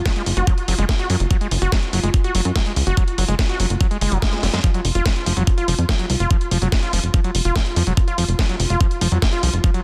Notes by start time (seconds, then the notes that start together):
Already playing: F4
0.06 F#3, kick, snare, closed hi-hat
0.16 G#3, closed hi-hat
0.26 F#1, open hi-hat
0.37 F#1 F#4, closed hi-hat
0.47 F#3, kick, closed hi-hat
0.58 closed hi-hat
0.68 F#1 F#3, open hi-hat
0.78 F#1 G#3, closed hi-hat
0.89 kick, snare, closed hi-hat
0.99 F#4, closed hi-hat
1.10 F#2 F#3, open hi-hat
1.20 F#1, closed hi-hat
1.31 F#3, kick, closed hi-hat
1.41 G#3, closed hi-hat
1.51 F#1, open hi-hat
1.62 F#1 F#4, closed hi-hat
1.72 F#3, kick, snare, closed hi-hat
1.83 closed hi-hat
1.93 F#1 F#3, open hi-hat
2.04 F#1 G#3, closed hi-hat
2.14 kick, closed hi-hat
2.24 F#4, closed hi-hat
2.35 F#1 F#3, open hi-hat
2.45 F#2, closed hi-hat
2.56 F#3, kick, snare, closed hi-hat
2.66 G#3, closed hi-hat
2.76 C#2, open hi-hat
2.87 F#1 F#4, closed hi-hat
2.97 F#3, kick, closed hi-hat
3.08 closed hi-hat
3.18 F#1 F#3, open hi-hat
3.28 F#1 G#3, closed hi-hat
3.39 kick, snare, closed hi-hat
3.49 F#4, closed hi-hat
3.60 F#1 F#3, open hi-hat
3.70 F#1, closed hi-hat
3.81 F#3, kick, closed hi-hat
3.91 G#3, closed hi-hat
4.01 F#1 G#3, open hi-hat
4.12 F#1 F#3, closed hi-hat
4.22 G#3, kick, snare, closed hi-hat
4.33 snare, closed hi-hat
4.43 F#1 F#3, snare, open hi-hat
4.53 F#2 G#3, snare, closed hi-hat
4.64 F3 F4, kick, closed hi-hat
4.74 F#3, closed hi-hat
4.85 F1, open hi-hat
4.95 F1 F4, closed hi-hat
5.06 F3, kick, snare, closed hi-hat
5.16 closed hi-hat
5.26 F1 F3, open hi-hat
5.37 F1 F#3, closed hi-hat
5.47 kick, closed hi-hat
5.58 F4, closed hi-hat
5.68 F1 F3, open hi-hat
5.78 F2, closed hi-hat
5.89 F3, kick, snare, closed hi-hat
5.99 F#3, closed hi-hat
6.10 C2, open hi-hat
6.20 F1 F4, closed hi-hat
6.31 F3, kick, closed hi-hat
6.41 closed hi-hat
6.51 F1 F3, open hi-hat
6.62 F1 F#3, closed hi-hat
6.72 kick, snare, closed hi-hat
6.83 F4, closed hi-hat
6.93 F1 F3, open hi-hat
7.04 F1, closed hi-hat
7.14 F3, kick, closed hi-hat
7.24 F#3, closed hi-hat
7.35 F1, open hi-hat
7.45 F1 F4, closed hi-hat
7.56 F3, kick, snare, closed hi-hat
7.66 closed hi-hat
7.76 F2 F3, open hi-hat
7.87 F1 F#3, closed hi-hat
7.97 kick, closed hi-hat
8.08 F4, closed hi-hat
8.18 F1 F3, open hi-hat
8.28 F1, closed hi-hat
8.39 F3, kick, snare, closed hi-hat
8.49 F#3, closed hi-hat
8.60 F1, open hi-hat
8.70 F1 F4, closed hi-hat
8.81 F3, kick, closed hi-hat
8.91 closed hi-hat
9.01 F1 F3, open hi-hat
9.12 F2 F#3, closed hi-hat
9.22 kick, snare, closed hi-hat
9.33 F4, closed hi-hat
9.43 C2 F3, open hi-hat
9.53 F1, closed hi-hat
9.64 F3, kick, closed hi-hat
9.74 F#3, closed hi-hat